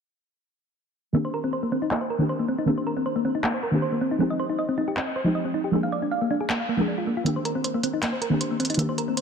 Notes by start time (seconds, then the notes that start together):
1.13 D#3 A#3 C4 D4
1.17 G4
1.25 C5
1.34 A#4
1.44 C4
1.53 C5
1.63 A#3
1.72 C4
1.82 D#4
1.91 A#3, clap
2.01 C5
2.10 A#4
2.18 D#3 A#3 C4 D4
2.22 G4
2.29 C5
2.39 A#3
2.48 C4
2.58 D#4
2.65 D#3 A#3 C4 D4
2.70 G4
2.78 C5
2.87 A#4
2.97 C4
3.06 C5
3.16 A#3
3.25 C4
3.35 D#4
3.44 A#3, clap
3.54 C5
3.63 A#4
3.71 D#3 A#3 C4 D4 G4
3.82 C5
3.92 A#3
4.01 C4
4.11 D#4
4.18 F3 G#3 C4 D#4 G4
4.30 D#5
4.40 C5
4.50 D#4
4.59 D#5
4.69 C4
4.78 D#4
4.88 G4
4.97 C4, clap
5.07 D#5
5.16 C5
5.24 F3 G#3 C4 D#4
5.28 G4
5.35 D#5
5.45 C4
5.54 D#4
5.64 G4
5.71 F3 G#3 A#3 D4
5.75 G#4
5.83 F5
5.92 D5
6.02 D4
6.11 F5
6.21 A#3
6.31 D4
6.41 G#4
6.50 A#3, clap
6.60 F5
6.69 A#3
6.77 F3 G#3 A#3 D4
6.81 G#4
6.88 D4
6.98 F4
7.07 A#3
7.17 F4
7.24 D#3 A#3 C4 D4 G4, closed hi-hat
7.36 C5
7.45 A#4, closed hi-hat
7.55 C4
7.64 C5, closed hi-hat
7.74 A#3
7.83 C4, closed hi-hat
7.93 D#4
8.03 A#3, clap, closed hi-hat
8.13 C5
8.22 A#4, closed hi-hat
8.30 D#3 A#3 C4 D4
8.34 G4
8.41 C5, closed hi-hat
8.51 A#3
8.60 C4, closed hi-hat
8.65 closed hi-hat
8.70 D#4, closed hi-hat
8.74 D#3 A#3, closed hi-hat
8.79 A#3 C4 D4 G4, closed hi-hat
8.89 C5
8.98 A#4, closed hi-hat
9.08 C4
9.17 C5, closed hi-hat